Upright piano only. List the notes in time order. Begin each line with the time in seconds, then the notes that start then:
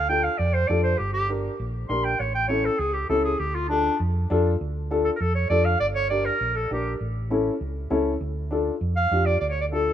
0.08 D4 F4 A4
0.69 D4 F4 A4
1.29 D4 G4 A#4
1.89 D4 G4 A#4
2.49 C#4 E4 A4
3.09 C#4 E4 A4
3.70 D4 F4 A4
4.30 D4 F4 A4
4.91 D4 F4 A4
5.50 D4 F4 A4
6.11 D4 G4 A#4
6.71 D4 G4 A#4
7.30 C#4 E4 A4
7.90 C#4 E4 A4
8.51 D4 F4 A4
9.11 D4 F4 G4
9.72 D4 F4 A4